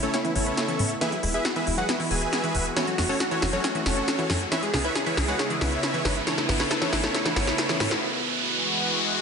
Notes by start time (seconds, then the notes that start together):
Already playing: C#3 A3 B3 E4, riser
0.03 A3 C#4 E4 A4 C#5, closed hi-hat
0.14 C#4 E4, snare, closed hi-hat
0.25 E3 E4, closed hi-hat
0.35 A1 B3 C#4 E4 A4 C#5, open hi-hat
0.46 B4, closed hi-hat
0.57 snare, closed hi-hat
0.68 E3, closed hi-hat
0.79 A2, open hi-hat
0.90 closed hi-hat
1.01 E3 G#3 E4 F#4 G#4 B4 E5, snare, closed hi-hat
1.12 F#3 E4, closed hi-hat
1.23 E1 G#3 E4, open hi-hat
1.34 E4 G#4 B4 E5, closed hi-hat
1.45 E4 F#4, snare, closed hi-hat
1.56 E3 E4 G#4 B4 E5, closed hi-hat
1.67 E1 E3 E4, open hi-hat
1.78 F#3 F#4 G#4 B4 F#5, closed hi-hat
1.89 B3 E4, snare, closed hi-hat
2.00 E3 E4, open hi-hat
2.11 E1 G#3 G#4 B4 E5 G#5, open hi-hat
2.22 G#4, closed hi-hat
2.33 snare, closed hi-hat
2.44 E3, closed hi-hat
2.55 E1, open hi-hat
2.66 closed hi-hat
2.76 E3 A3 C#4 F#4 A4 C#5, snare, closed hi-hat
2.87 F#3 F#4, closed hi-hat
2.98 F#1 A3 F#4, snare, open hi-hat
3.09 C#4 F#4 A4 C#5, open hi-hat
3.20 F#4, snare, closed hi-hat
3.31 E3 C#4 F#4 A4 C#5, closed hi-hat
3.42 F#1 E3 F#4, snare, open hi-hat
3.53 F#3 C#4 F#4 A4 C#5, closed hi-hat
3.64 C#4 F#4, snare, closed hi-hat
3.75 E3 F#4, closed hi-hat
3.86 F#1 A3 C#4 F#4 A4 C#5, snare, open hi-hat
3.97 A4, closed hi-hat
4.08 snare, closed hi-hat
4.19 E3, closed hi-hat
4.30 F#2, snare, open hi-hat
4.41 closed hi-hat
4.51 C#3 E3 G#3 B3 E4 B4 C#5 E5, snare, closed hi-hat
4.63 G#3 G#4, closed hi-hat
4.73 C#2 B3 G#4, snare, open hi-hat
4.84 E4 B4 C#5 E5, closed hi-hat
4.95 G#4, snare, closed hi-hat
5.06 E3 E4 B4 C#5 E5, closed hi-hat
5.17 C#2 E3 G#4, snare, open hi-hat
5.28 G#3 F#4 B4 C#5 F#5, closed hi-hat
5.39 C#4 G#4, snare, closed hi-hat
5.50 E3 G#4, closed hi-hat
5.61 C#2 B3 E4 B4 C#5 E5, snare, open hi-hat
5.72 B4, closed hi-hat
5.83 snare, closed hi-hat
5.94 E3, closed hi-hat
6.05 G#1, snare, open hi-hat
6.16 closed hi-hat
6.27 E3 A3 C#4 E4 A4 C#5, snare, closed hi-hat
6.38 A3 E4, snare, closed hi-hat
6.49 A1 B3 E4, snare, open hi-hat
6.59 C#4 E4 A4 B4 C#5, snare, open hi-hat
6.71 E4 A4, snare, closed hi-hat
6.82 E3 C#4 E4 A4 C#5, snare, closed hi-hat
6.92 A1 E3 E4, snare, open hi-hat
7.03 A3 C#4 E4 A4 C#5, snare, closed hi-hat
7.14 C#4 E4, snare, closed hi-hat
7.25 E3 E4, snare, closed hi-hat
7.36 A1 B3 C#4 E4 A4 C#5, snare, open hi-hat
7.47 B4, snare, closed hi-hat
7.58 snare, closed hi-hat
7.69 E3, snare, closed hi-hat
7.80 A2, snare, open hi-hat
7.91 snare
8.02 E3 G#3 F#4